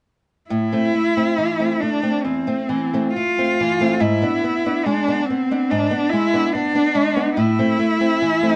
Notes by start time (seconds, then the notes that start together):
0.50 A2 E4
0.72 A3 C4
0.95 A3
1.17 A3 C4
1.38 E3
1.60 A3 C4
1.80 A3 D4
2.03 A3 C4
2.22 E2 C4
2.47 A3 C4
2.69 E3
2.94 A3 C4
3.14 A3 F4
3.38 A3 C4
3.60 E3
3.80 A3 C4
4.00 G#2 E4
4.22 B3 D4
4.44 B3
4.66 B3 D4
4.85 G#3 D4
5.08 B3 D4
5.26 C4
5.30 B3
5.51 B3 D4
5.70 G#2 D4
5.91 B3 D4
6.10 G#3 E4
6.34 B3 D4
6.53 B3 D4
6.75 B3 D4
6.95 G#3
7.16 B3 D4
7.37 A2 E4
7.59 A3 C4
7.79 A3
8.01 A3 C4
8.22 E3
8.43 A3 C4